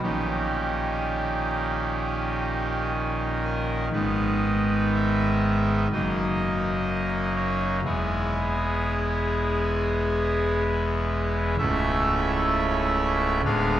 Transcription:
pipe organ
0.02 A#1 A#2 D#3 C#4 D#4 G4
3.44 A#4
3.92 G#1 G#2 D#3 B3 D#4 B4
4.94 E5
5.92 F#1 F#2 F#3 A#3 D#4 D#5
7.36 C#5
7.84 E1 E2 G#3 B3 E4 G#4
11.58 C#1 C#2 A3 C#4 E4 E5
13.44 D1 D2 G#3 B3 D4 F5

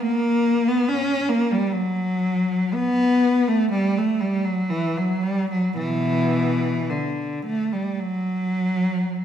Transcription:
cello
0.03 A#3
0.68 B3
0.89 C#4
1.29 A#3
1.51 G3
1.73 F#3
2.74 B3
3.48 A3
3.72 G3
3.98 A3
4.21 G3
4.45 F#3
4.70 E3
4.98 F#3
5.23 G3
5.51 F#3
5.78 B2 E3
6.90 D3
7.46 A3
7.73 G3
8.00 F#3

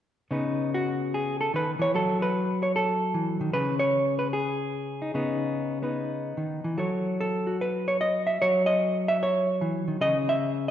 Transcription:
hollow-body jazz guitar
0.31 C#3 B3 D#4 B4
0.74 F#4
1.14 G#4
1.41 A4
1.54 D#3 B4
1.79 E3 C#5
1.94 F#3 A4
2.22 B4
2.63 C#5
2.76 A4
3.14 E3
3.41 D#3
3.54 C#3 B4
3.79 C#5
4.19 B4
4.33 G#4
5.02 D#4
5.14 C#3 B3 D#4
5.82 B3 D#4 B4
6.37 D#3
6.64 E3
6.78 F#3 A4 C#5
7.21 A4
7.47 F#4
7.61 B4
7.88 C#5
8.01 D#5
8.27 E5
8.42 F#3 C#5
8.66 D#5
9.08 E5
9.23 C#5
9.61 E3
9.88 D#3
10.01 C#3 D#5
10.29 E5

